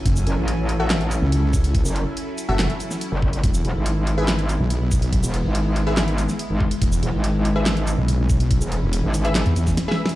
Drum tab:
HH |x-----x-----x-----x-----x--x--x-----x--------x--|x-----x-----x-----x-----x--x--x-----x--------x--|x-----x-----x-----x-----x--x--x-----x--------x--|x-----x-----x-----x-----x--x--x-----x--------x--|
SH |---x--------------------------x-----------x-----|---x--------------x-----------x--x--------------|---x--------------------------x-----------x-----|---x--------------------------x--x--------------|
CP |------------------------x-----------------------|------------------------x-----------------------|------------------------x-----------------------|------------------------x-----------------------|
SD |------------------------o-----------------------|------------------------o--------o--------------|------------------------o-----------------------|------------------------o--------o--------------|
BD |o-----------------------------------------o-----|o-----------------------------------------o-----|o-----------------------------------------o-----|o-----------------------------------------o-----|

HH |x-----x-----x-----x-----x--x--x-----x--------x--|x-----x-----x-----x--x--x--x--x-----x--------x--|
SH |---x--------------------------x-----------x-----|---x--------------x-----------x--x--------------|
CP |------------------------x-----------------------|------------------------x-----------------------|
SD |------------------------o-----------------------|------------------------o--------o--o---o---o---|
BD |o-----------------------------------------o-----|o--------------------------------o--------------|